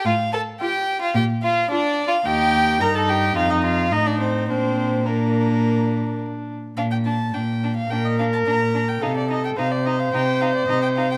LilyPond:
<<
  \new Staff \with { instrumentName = "Violin" } { \time 4/4 \key bes \major \tempo 4 = 108 f''8 a''8 g''8. f''16 g''8 f''8 \tuplet 3/2 { d''4 f''8 } | g''4 bes''16 a''16 g''8 f''16 ees''16 f''8 ees''16 d''16 c''8 | c''4 bes'2 r4 | f''16 g''16 a''8 g''8. f''16 g''16 ees''16 f''16 a''16 bes''8. g''16 |
f''16 d''16 ees''16 g''16 f''16 d''16 ees''16 f''16 g''8 f''16 d''16 ees''16 g''16 f''16 g''16 | }
  \new Staff \with { instrumentName = "Viola" } { \time 4/4 \key bes \major r4 f'4 r4 f'4 | ees'4 ees'4 ees'4 ees'4 | d'4 d'2~ d'8 r8 | r2 bes'2 |
a'4 c''2. | }
  \new Staff \with { instrumentName = "Violin" } { \time 4/4 \key bes \major f'8 a'8 g'8. f'16 g'8 f'8 \tuplet 3/2 { d'4 f'8 } | g'4 bes'16 a'16 g'8 f'16 ees'16 f'8 ees'16 d'16 c'8 | c'4 bes2 r4 | d'8 d'8 d'8 d'8 d'8 d'8 d'8 d'8 |
ees'8 ees'8 ees'8 ees'8 ees'8 ees'8 ees'8 ees'8 | }
  \new Staff \with { instrumentName = "Cello" } { \clef bass \time 4/4 \key bes \major a,4 r4 bes,4 r4 | ees,4 g,4 f,4 a,4 | bes,2.~ bes,8 r8 | bes,4 bes,4 bes,4 bes,4 |
c4 c4 c4 c4 | }
>>